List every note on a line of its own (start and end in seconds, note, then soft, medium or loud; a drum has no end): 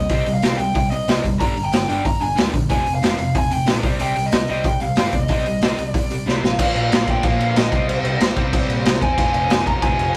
0.00 0.33 D#5 medium
0.09 0.20 C2 loud
0.09 0.25 C3 medium
0.09 0.26 G3 medium
0.09 0.26 C4 loud
0.09 kick loud
0.09 open hi-hat medium
0.26 0.37 C2 medium
0.26 0.41 C3 medium
0.26 0.41 G3 medium
0.26 open hi-hat medium
0.34 0.58 F5 medium
0.42 0.53 C2 medium
0.42 0.58 C3 medium
0.42 0.58 G3 medium
0.42 0.59 C4 medium
0.42 snare loud
0.42 open hi-hat medium
0.58 0.69 C2 medium
0.58 0.73 C3 medium
0.58 0.73 G3 medium
0.58 0.89 G5 loud
0.58 open hi-hat medium
0.74 0.95 C2 medium
0.74 0.90 C3 medium
0.74 0.90 G3 medium
0.74 kick loud
0.74 open hi-hat medium
0.91 1.07 C3 medium
0.91 1.07 G3 medium
0.91 1.21 D#5 medium
0.91 open hi-hat medium
1.08 1.18 C2 medium
1.08 1.23 C3 medium
1.08 1.23 G3 medium
1.08 1.24 C4 medium
1.08 snare loud
1.08 open hi-hat medium
1.24 1.34 F1 medium
1.24 1.39 C3 medium
1.24 1.39 G3 medium
1.24 kick medium
1.24 open hi-hat medium
1.39 1.50 G1 medium
1.39 1.55 G2 medium
1.39 1.55 D3 loud
1.39 1.56 G3 loud
1.39 1.63 A#5 loud
1.39 kick loud
1.39 open hi-hat medium
1.56 1.68 G1 medium
1.56 1.71 G2 medium
1.56 1.71 D3 medium
1.56 open hi-hat medium
1.65 1.87 G5 medium
1.72 1.83 G1 medium
1.72 1.87 G2 medium
1.72 1.87 D3 medium
1.72 snare loud
1.72 open hi-hat medium
1.88 2.00 G1 medium
1.88 2.03 G2 medium
1.88 2.03 D3 medium
1.88 2.04 G3 loud
1.88 2.06 G5 medium
1.88 open hi-hat medium
2.04 2.15 G1 medium
2.04 2.19 G2 medium
2.04 2.20 D3 medium
2.04 2.22 A#5 medium
2.04 kick loud
2.04 open hi-hat medium
2.20 2.33 G1 medium
2.20 2.35 G2 medium
2.20 2.35 D3 medium
2.20 2.37 G#5 medium
2.20 open hi-hat medium
2.36 2.48 D2 medium
2.36 2.52 G2 medium
2.36 2.53 D3 medium
2.36 2.53 G3 medium
2.36 snare loud
2.36 open hi-hat medium
2.54 2.64 A#1 medium
2.54 2.69 G2 medium
2.54 2.69 D3 medium
2.54 kick medium
2.54 open hi-hat medium
2.69 2.80 F1 medium
2.69 2.85 F2 medium
2.69 2.86 C3 loud
2.69 2.86 F3 medium
2.69 2.95 G#5 loud
2.69 kick loud
2.69 open hi-hat medium
2.86 2.97 F1 medium
2.86 3.01 F2 medium
2.86 3.02 C3 medium
2.86 open hi-hat medium
2.95 3.19 F5 medium
3.02 3.14 F1 medium
3.02 3.17 F2 medium
3.02 3.18 C3 medium
3.02 3.18 F3 loud
3.02 snare loud
3.02 open hi-hat medium
3.19 3.30 F1 medium
3.19 3.34 F2 medium
3.19 3.34 C3 medium
3.19 3.36 F5 medium
3.19 open hi-hat medium
3.35 3.55 F1 medium
3.35 3.50 F2 medium
3.35 3.50 C3 medium
3.35 3.52 G#5 medium
3.35 kick loud
3.35 open hi-hat medium
3.51 3.65 F2 medium
3.51 3.65 C3 medium
3.51 3.68 G5 medium
3.51 open hi-hat medium
3.66 3.79 A#1 medium
3.66 3.82 F2 medium
3.66 3.82 C3 medium
3.66 3.83 F3 medium
3.66 snare loud
3.66 open hi-hat medium
3.83 3.94 C2 medium
3.83 3.99 C3 medium
3.83 3.99 G3 medium
3.83 4.00 C4 loud
3.83 kick loud
3.83 open hi-hat medium
3.99 4.11 C2 medium
3.99 4.15 C3 medium
3.99 4.15 G3 loud
3.99 4.16 C4 loud
3.99 4.26 G5 loud
3.99 open hi-hat medium
4.16 4.27 C2 medium
4.16 4.31 C3 medium
4.16 4.31 G3 medium
4.16 open hi-hat medium
4.26 4.49 D#5 medium
4.32 4.43 C2 medium
4.32 4.47 C3 medium
4.32 4.48 G3 medium
4.32 snare loud
4.32 open hi-hat medium
4.48 4.60 C2 medium
4.48 4.64 C3 medium
4.48 4.65 G3 loud
4.48 4.65 C4 loud
4.48 4.66 D#5 medium
4.48 open hi-hat medium
4.64 4.75 C2 medium
4.64 4.80 C3 medium
4.64 4.80 G3 medium
4.64 4.82 G5 medium
4.64 kick loud
4.64 open hi-hat medium
4.80 4.92 C2 medium
4.80 4.96 C3 medium
4.80 4.96 G3 medium
4.80 5.12 F5 medium
4.80 open hi-hat medium
4.96 5.08 G2 medium
4.96 5.12 C3 medium
4.96 5.12 G3 medium
4.96 5.13 C4 medium
4.96 snare loud
4.96 open hi-hat medium
5.12 5.23 D#2 medium
5.12 5.28 C3 medium
5.12 5.28 G3 medium
5.12 5.87 D#5 medium
5.12 kick medium
5.12 open hi-hat medium
5.28 5.40 C2 loud
5.28 5.45 C3 medium
5.28 5.46 G3 loud
5.28 5.46 C4 loud
5.28 kick loud
5.28 open hi-hat medium
5.46 5.56 C2 medium
5.46 5.61 C3 medium
5.46 5.61 G3 medium
5.46 open hi-hat medium
5.62 5.72 C2 medium
5.62 5.76 C3 medium
5.62 5.77 G3 medium
5.62 5.78 C4 medium
5.62 snare loud
5.62 open hi-hat medium
5.77 5.89 C2 medium
5.77 5.93 C3 medium
5.77 5.93 G3 medium
5.77 open hi-hat medium
5.87 6.24 D5 medium
5.94 6.14 C2 medium
5.94 6.09 C3 medium
5.94 6.10 G3 medium
5.94 kick loud
5.94 open hi-hat medium
6.10 6.25 C3 medium
6.10 6.26 G3 medium
6.10 open hi-hat medium
6.26 6.37 C2 medium
6.26 6.42 C3 medium
6.26 6.42 G3 medium
6.26 6.43 C4 medium
6.26 snare medium
6.43 6.53 A#1 medium
6.43 6.58 C3 medium
6.43 6.58 G3 medium
6.43 7.10 F5 medium
6.43 snare medium
6.59 6.71 A#1 loud
6.59 7.23 A#2 loud
6.59 7.24 F3 medium
6.59 7.24 A#3 loud
6.59 kick loud
6.59 crash loud
6.59 crash medium
6.76 6.88 A#1 medium
6.76 crash medium
6.92 7.16 A#1 medium
6.92 snare loud
6.92 crash medium
7.08 7.24 G5 medium
7.08 kick medium
7.08 crash medium
7.23 7.36 A#1 medium
7.23 7.71 A#2 medium
7.23 7.72 F3 medium
7.23 7.73 A#3 medium
7.23 7.58 F5 medium
7.23 kick loud
7.23 crash medium
7.40 7.52 A#1 medium
7.40 crash medium
7.56 7.68 A#1 medium
7.56 7.89 D#5 medium
7.56 snare loud
7.56 crash medium
7.72 7.84 C2 medium
7.72 8.36 C3 medium
7.72 8.37 G3 loud
7.72 8.37 C4 loud
7.72 kick loud
7.72 crash medium
7.88 8.00 C2 loud
7.88 8.04 C5 medium
7.88 crash medium
8.04 8.16 C2 medium
8.04 9.05 C5 medium
8.04 crash medium
8.20 8.32 C2 medium
8.20 snare loud
8.20 crash medium
8.36 8.49 C2 loud
8.36 9.02 C3 medium
8.36 9.02 G3 medium
8.36 10.16 C4 medium
8.36 kick medium
8.36 crash medium
8.53 8.65 C2 loud
8.53 kick loud
8.53 crash medium
8.69 8.81 A#2 medium
8.69 crash medium
8.85 8.97 C2 loud
8.85 snare loud
8.85 crash medium
9.02 9.14 E2 medium
9.02 9.67 G#5 loud
9.02 kick medium
9.02 crash medium
9.18 9.30 F1 loud
9.18 9.81 F2 medium
9.18 9.82 C3 loud
9.18 9.85 F3 loud
9.18 kick loud
9.18 crash medium
9.34 9.46 F1 medium
9.34 crash medium
9.50 9.73 F1 medium
9.50 snare loud
9.50 crash medium
9.66 9.82 A#5 loud
9.66 kick medium
9.66 crash medium
9.82 9.94 F1 loud
9.82 10.16 F2 medium
9.82 10.16 C3 medium
9.82 10.16 F3 medium
9.82 10.15 G#5 loud
9.82 kick loud
9.82 crash medium
9.99 10.10 F1 medium
9.99 crash medium